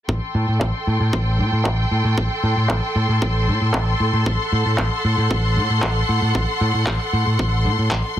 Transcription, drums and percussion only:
0.09 kick
0.61 kick, clap
1.13 kick
1.65 kick, clap
2.18 kick
2.69 kick, clap
3.22 kick
3.74 kick, clap
4.26 kick
4.78 kick, clap
5.31 kick
5.82 kick, clap
6.35 kick
6.87 kick, clap
7.39 kick
7.91 kick, clap

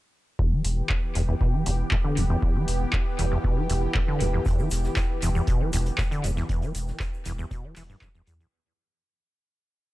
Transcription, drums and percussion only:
0.39 kick
0.65 open hi-hat
0.89 kick, clap
1.15 open hi-hat
1.41 kick
1.66 open hi-hat
1.91 kick, clap
2.17 open hi-hat
2.43 kick
2.68 open hi-hat
2.93 kick, clap
3.19 open hi-hat
3.44 kick
3.70 open hi-hat
3.95 kick, clap
4.20 open hi-hat
4.46 kick, closed hi-hat, shaker
4.59 shaker
4.71 snare, closed hi-hat, open hi-hat, shaker
4.84 snare, shaker
4.96 kick, snare, clap, closed hi-hat, shaker
5.22 closed hi-hat, open hi-hat, shaker
5.35 shaker
5.47 kick, closed hi-hat, shaker
5.73 closed hi-hat, open hi-hat, shaker
5.86 closed hi-hat, shaker
5.98 kick, snare, clap, closed hi-hat, shaker
6.12 closed hi-hat, shaker
6.24 closed hi-hat, open hi-hat, shaker
6.37 snare, shaker
6.49 kick, closed hi-hat, shaker
6.62 closed hi-hat, shaker
6.75 closed hi-hat, open hi-hat, shaker
6.87 snare, shaker
7.00 kick, snare, clap, closed hi-hat, shaker
7.14 shaker
7.26 closed hi-hat, open hi-hat, shaker
7.38 shaker
7.51 kick, closed hi-hat, shaker
7.76 clap, open hi-hat, shaker
7.89 shaker
8.01 kick, snare, clap, closed hi-hat, shaker
8.15 shaker
8.27 closed hi-hat, open hi-hat, shaker
8.40 closed hi-hat, shaker

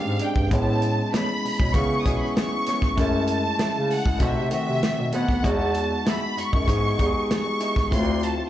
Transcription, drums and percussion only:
0.19 closed hi-hat
0.36 kick
0.51 kick, closed hi-hat
0.82 closed hi-hat
1.14 snare, closed hi-hat
1.45 open hi-hat
1.60 kick
1.74 kick, closed hi-hat
2.06 kick, closed hi-hat
2.37 snare, closed hi-hat
2.66 snare, closed hi-hat
2.82 kick, snare
2.98 kick, closed hi-hat
3.27 closed hi-hat
3.59 snare, closed hi-hat
3.91 open hi-hat
4.06 kick
4.20 kick, closed hi-hat
4.51 closed hi-hat
4.83 snare, closed hi-hat
5.12 closed hi-hat
5.29 kick, snare
5.44 kick, closed hi-hat
5.74 closed hi-hat
6.06 snare, closed hi-hat
6.38 closed hi-hat
6.53 kick
6.68 kick, closed hi-hat
6.99 kick, closed hi-hat
7.31 snare, closed hi-hat
7.60 closed hi-hat
7.76 kick, snare
7.92 kick, closed hi-hat
8.23 closed hi-hat

